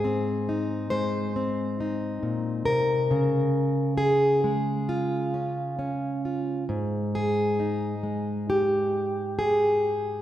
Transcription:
Already playing: G#2 G#3 G#4
0.04 C4
0.49 D#4
0.90 G#3 C5
1.36 C4
1.80 D#4
2.23 A#2
2.65 C3 A#4
3.11 C#3
3.98 G#4
4.44 G#3
4.89 F4
5.34 C#4
5.79 C#4
6.25 F4
6.69 G#2
7.15 G#4
7.60 D#4
8.03 G#3
8.50 G4
9.39 G#4

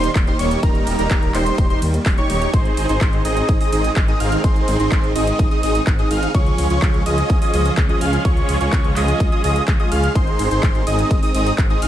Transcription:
Already playing: D#3 G3 A#3 D#4 G4 C5 C6
0.04 closed hi-hat
0.15 D#1, kick, clap, closed hi-hat, ride
0.27 D#4 G4 C5 C6, closed hi-hat
0.39 D#1 D#4 G4 C#5 C#6, open hi-hat, ride
0.51 closed hi-hat
0.63 D#1 D#4 G4 A#4 A#5, kick, closed hi-hat, ride
0.75 closed hi-hat
0.87 D#1, open hi-hat, ride
0.99 D#1 D#4 G4 A#4 A#5, closed hi-hat
1.11 D#1, kick, clap, closed hi-hat, ride
1.23 D#1, closed hi-hat
1.34 D#1 D#4 G4 C5 C6, clap, open hi-hat, ride
1.46 closed hi-hat
1.58 D#1, kick, closed hi-hat, ride
1.70 D#4 G4 C5 C6, closed hi-hat
1.82 D#2, open hi-hat, ride
1.94 closed hi-hat
2.06 D#1, kick, clap, open hi-hat, ride
2.18 D#4 G4 C#5 C#6, closed hi-hat
2.30 D#1, open hi-hat, ride
2.42 closed hi-hat
2.54 G#1 D#3 G#3 C4 D#4 G#4 C5 C6, kick, closed hi-hat, ride
2.65 closed hi-hat
2.77 G#1, open hi-hat, ride
2.89 G#1 D#4 G#4 C5 C6, closed hi-hat
3.01 G#1, kick, clap, closed hi-hat, ride
3.13 G#1, closed hi-hat
3.25 G#1 D#4 G#4 D#5 D#6, open hi-hat, ride
3.37 closed hi-hat
3.49 G#1, kick, closed hi-hat, ride
3.61 D#4 G#4 D#5 D#6, open hi-hat
3.72 G#1 D#4 G#4 D#5 D#6, open hi-hat, ride
3.84 closed hi-hat
3.96 G#1, kick, clap, closed hi-hat, ride
4.08 D#4 G#4 D#5 D#6, closed hi-hat
4.20 G#1 D#4 G#4 F5 F6, open hi-hat, ride
4.32 closed hi-hat
4.44 G#1 D#4 G#4 C5 C6, kick, closed hi-hat, ride
4.56 closed hi-hat
4.68 G#1, open hi-hat, ride
4.80 G#1 D#4 G#4 C5 C6, closed hi-hat
4.92 G#1, kick, clap, closed hi-hat, ride
5.04 G#1, closed hi-hat
5.15 G#1 D#4 G#4 D#5 D#6, open hi-hat, ride
5.27 closed hi-hat
5.39 G#1, kick, closed hi-hat, ride
5.51 D#4 G#4 D#5 D#6, closed hi-hat
5.63 G#1 D#4 G#4 D#5 D#6, open hi-hat, ride
5.75 closed hi-hat
5.87 G#1, kick, clap, closed hi-hat, ride
5.99 D#4 G#4 D#5 D#6, closed hi-hat
6.11 G#1 D#4 G#4 F5 F6, open hi-hat, ride
6.23 closed hi-hat
6.35 C#2 F3 G#3 C#4 F4 G#4 C#5 C#6, kick, closed hi-hat, ride
6.46 closed hi-hat
6.58 C#2, open hi-hat, ride
6.70 C#2 F4 G#4 C#5 C#6, closed hi-hat
6.82 C#2, kick, clap, closed hi-hat, ride
6.94 C#2, closed hi-hat
7.06 C#2 F4 G#4 D#5 D#6, open hi-hat, ride
7.18 closed hi-hat
7.30 C#2, kick, closed hi-hat, ride
7.42 F4 G#4 D#5 D#6, open hi-hat
7.54 C#2 F4 G#4 D#5 D#6, open hi-hat, ride
7.66 closed hi-hat
7.77 C#2, kick, clap, closed hi-hat, ride
7.89 F4 G#4 D#5 D#6, closed hi-hat
8.01 C#2 F4 G#4 F5 F6, open hi-hat, ride
8.13 closed hi-hat
8.25 C#2 F4 G#4 C#5 C#6, kick, closed hi-hat, ride
8.37 closed hi-hat
8.49 C#2, open hi-hat, ride
8.61 C#2 F4 G#4 C#5 C#6, closed hi-hat
8.73 C#2, kick, clap, closed hi-hat, ride
8.85 C#2, closed hi-hat
8.96 C#2 F4 G#4 D#5 D#6, clap, open hi-hat, ride
9.08 closed hi-hat
9.20 C#2, kick, closed hi-hat, ride
9.32 F4 G#4 D#5 D#6, closed hi-hat
9.44 C#2 F4 G#4 D#5 D#6, open hi-hat, ride
9.56 closed hi-hat
9.68 C#2, kick, clap, closed hi-hat, ride
9.80 F4 G#4 D#5 D#6, closed hi-hat
9.92 C#2 F4 G#4 F5 F6, open hi-hat, ride
10.04 closed hi-hat
10.15 G#1 D#3 C4 D#4 G#4 C5 C6, kick, closed hi-hat, ride
10.27 closed hi-hat
10.39 G#1, open hi-hat, ride
10.51 G#1 D#4 G#4 C5 C6, closed hi-hat
10.63 G#1, kick, clap, closed hi-hat, ride
10.75 G#1, closed hi-hat
10.87 G#1 D#4 G#4 D#5 D#6, open hi-hat, ride
10.99 closed hi-hat
11.11 G#1, kick, closed hi-hat, ride
11.23 D#4 G#4 D#5 D#6, open hi-hat
11.35 G#1 D#4 G#4 D#5 D#6, open hi-hat, ride
11.46 closed hi-hat
11.58 G#1, kick, clap, closed hi-hat, ride
11.70 D#4 G#4 D#5 D#6, closed hi-hat
11.82 G#1 D#4 G#4 F5 F6, open hi-hat, ride

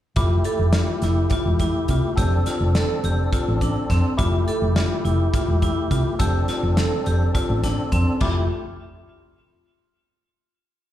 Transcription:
0.16 F1 A3 E4 F4 G4, kick, closed hi-hat
0.44 A4, closed hi-hat
0.59 F1
0.73 F4, snare, closed hi-hat
1.02 F1 E4, snare, closed hi-hat
1.30 F4, kick, closed hi-hat
1.46 E1
1.59 E4, kick, closed hi-hat
1.88 C2 F4, kick, closed hi-hat
2.16 F1 C4 D4 G4 A4, kick, closed hi-hat
2.46 F4, snare, closed hi-hat
2.60 F1
2.75 A4, snare, closed hi-hat
3.04 F1 G4, closed hi-hat
3.33 F4, kick, closed hi-hat
3.48 A1
3.61 D4, kick, closed hi-hat
3.90 F2 C4, kick, snare, closed hi-hat
4.17 F1 A3 E4 F4 G4, kick, closed hi-hat
4.48 A4, closed hi-hat
4.62 F1
4.76 F4, snare, closed hi-hat
5.05 F1 E4, closed hi-hat
5.34 F4, kick, closed hi-hat
5.48 E1
5.62 E4, kick, closed hi-hat
5.91 C2 F4, kick, closed hi-hat
6.19 F1 C4 D4 G4 A4, kick, closed hi-hat
6.48 F4, snare, closed hi-hat
6.63 F1
6.77 A4, snare, closed hi-hat
7.06 F1 G4, closed hi-hat
7.35 F4, kick, closed hi-hat
7.50 A1
7.63 D4, kick, snare, closed hi-hat
7.92 F2 C4, kick, closed hi-hat
8.20 F1 A3 E4 F4 G4, kick, crash

